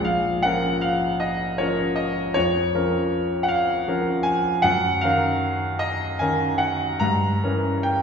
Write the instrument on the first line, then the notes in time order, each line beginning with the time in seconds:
grand piano
0.00 A#1
0.05 F5
0.43 F3 C#4 A#4 F#5
0.81 F5
1.20 D#5
1.58 F3 C#4 A#4 C#5
1.96 D#5
2.34 F2 C#5
2.75 F3 C#4 A#4
3.43 F#5
3.48 F5
3.88 F3 C#4 A#4
4.23 G#5
4.62 F#2 F#5
5.01 D#3 C#4 A#4 F5
5.79 D#5
6.19 D#3 C#4 A#4 G#5
6.58 F#5
7.00 G2 A#5
7.43 E3 C#4 A#4
7.83 G5